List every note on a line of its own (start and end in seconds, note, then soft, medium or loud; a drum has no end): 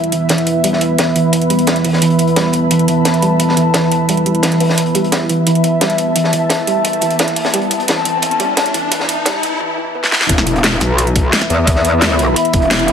0.00 9.57 E3 medium
0.00 9.56 B3 medium
0.00 9.61 B3 medium
0.00 9.60 E4 medium
0.00 9.56 B4 medium
0.00 2.01 E5 loud
0.00 9.60 E5 medium
0.00 closed hi-hat soft
0.12 0.23 E3 medium
0.12 closed hi-hat medium
0.29 0.40 E3 medium
0.29 snare loud
0.29 closed hi-hat medium
0.38 closed hi-hat soft
0.47 closed hi-hat medium
0.57 5.46 B5 medium
0.64 0.80 G3 loud
0.64 closed hi-hat medium
0.73 snare soft
0.81 closed hi-hat medium
0.98 1.09 E3 medium
0.98 snare loud
0.98 closed hi-hat medium
1.16 1.26 E3 medium
1.16 closed hi-hat medium
1.33 closed hi-hat medium
1.42 closed hi-hat soft
1.50 1.66 G3 loud
1.50 closed hi-hat medium
1.59 closed hi-hat soft
1.67 snare loud
1.67 closed hi-hat medium
1.76 closed hi-hat soft
1.85 1.95 E3 medium
1.85 closed hi-hat medium
1.85 open hi-hat medium
1.93 snare medium
2.02 2.12 E3 medium
2.02 4.77 A5 medium
2.02 closed hi-hat medium
2.10 closed hi-hat soft
2.19 closed hi-hat medium
2.27 closed hi-hat soft
2.36 2.52 G3 loud
2.36 snare loud
2.36 closed hi-hat medium
2.53 closed hi-hat medium
2.71 2.81 E3 medium
2.71 closed hi-hat medium
2.79 closed hi-hat soft
2.88 2.99 E3 medium
2.88 closed hi-hat medium
3.05 snare loud
3.05 closed hi-hat medium
3.14 closed hi-hat soft
3.22 3.38 G3 loud
3.22 closed hi-hat medium
3.40 closed hi-hat medium
3.49 snare soft
3.57 3.68 E3 medium
3.57 closed hi-hat medium
3.74 3.85 E3 medium
3.74 snare loud
3.74 closed hi-hat medium
3.92 closed hi-hat medium
4.09 4.25 G3 loud
4.09 closed hi-hat medium
4.17 closed hi-hat soft
4.26 4.37 G3 medium
4.26 closed hi-hat medium
4.35 closed hi-hat soft
4.43 4.54 E3 medium
4.43 snare loud
4.43 closed hi-hat medium
4.52 closed hi-hat soft
4.60 4.71 B3 medium
4.60 closed hi-hat medium
4.60 open hi-hat medium
4.69 snare medium
4.77 7.53 E5 medium
4.77 closed hi-hat medium
4.77 riser medium
4.86 closed hi-hat soft
4.95 5.06 G3 loud
4.95 closed hi-hat medium
5.04 closed hi-hat soft
5.12 snare loud
5.12 closed hi-hat medium
5.29 5.40 E3 medium
5.29 closed hi-hat medium
5.36 9.60 A5 medium
5.47 5.57 E3 medium
5.47 closed hi-hat medium
5.55 closed hi-hat soft
5.64 closed hi-hat medium
5.81 5.92 G3 loud
5.81 snare loud
5.81 closed hi-hat medium
5.90 closed hi-hat soft
5.98 closed hi-hat medium
6.16 6.26 E3 medium
6.16 closed hi-hat medium
6.24 snare soft
6.33 6.43 E3 medium
6.33 closed hi-hat medium
6.50 snare loud
6.50 closed hi-hat medium
6.67 6.78 G3 loud
6.67 closed hi-hat medium
6.85 closed hi-hat medium
6.93 closed hi-hat soft
7.01 7.12 E3 medium
7.01 closed hi-hat medium
7.11 closed hi-hat soft
7.19 7.30 E3 medium
7.19 snare loud
7.19 closed hi-hat medium
7.28 closed hi-hat soft
7.36 closed hi-hat medium
7.36 open hi-hat medium
7.45 snare medium
7.54 7.64 G3 loud
7.54 9.60 A5 loud
7.54 closed hi-hat medium
7.62 closed hi-hat soft
7.71 closed hi-hat medium
7.80 closed hi-hat medium
7.88 7.99 E3 medium
7.88 snare loud
7.88 closed hi-hat medium
8.05 8.16 E3 medium
8.05 closed hi-hat medium
8.22 closed hi-hat medium
8.31 closed hi-hat soft
8.40 8.50 G3 loud
8.40 closed hi-hat medium
8.57 snare loud
8.57 closed hi-hat medium
8.66 closed hi-hat soft
8.74 8.85 E3 medium
8.74 closed hi-hat medium
8.91 9.02 E3 medium
8.91 closed hi-hat medium
8.91 closed hi-hat loud
9.00 snare soft
9.09 closed hi-hat medium
9.26 9.37 G3 loud
9.26 snare loud
9.26 closed hi-hat medium
9.26 closed hi-hat loud
9.43 closed hi-hat medium
9.60 9.71 E3 medium
9.78 9.94 E3 medium
9.95 10.06 B3 medium
10.04 snare medium
10.12 10.23 E4 medium
10.12 snare medium
10.21 snare medium
10.29 10.45 E1 loud
10.29 12.92 E3 medium
10.29 12.92 B3 medium
10.29 12.92 B4 medium
10.29 12.92 E5 loud
10.29 kick loud
10.29 closed hi-hat loud
10.29 closed hi-hat medium
10.29 impact medium
10.37 snare medium
10.37 closed hi-hat soft
10.46 10.80 E1 medium
10.46 12.92 E4 medium
10.46 closed hi-hat medium
10.56 closed hi-hat soft
10.64 snare loud
10.64 closed hi-hat loud
10.64 closed hi-hat medium
10.81 11.31 B1 loud
10.81 snare soft
10.81 closed hi-hat medium
10.98 closed hi-hat medium
11.07 12.92 B5 medium
11.07 closed hi-hat soft
11.16 kick loud
11.16 closed hi-hat medium
11.21 12.92 E5 medium
11.33 snare loud
11.33 closed hi-hat loud
11.42 snare medium
11.42 closed hi-hat soft
11.50 12.35 E2 loud
11.50 closed hi-hat medium
11.67 kick loud
11.67 closed hi-hat medium
11.76 snare soft
11.85 closed hi-hat medium
12.02 snare loud
12.02 closed hi-hat loud
12.02 closed hi-hat medium
12.19 closed hi-hat medium
12.36 closed hi-hat loud
12.36 closed hi-hat medium
12.45 closed hi-hat soft
12.53 12.92 E1 loud
12.53 kick loud
12.53 closed hi-hat medium
12.62 closed hi-hat soft
12.71 snare loud
12.71 closed hi-hat medium
12.79 closed hi-hat soft
12.88 closed hi-hat medium
12.88 open hi-hat medium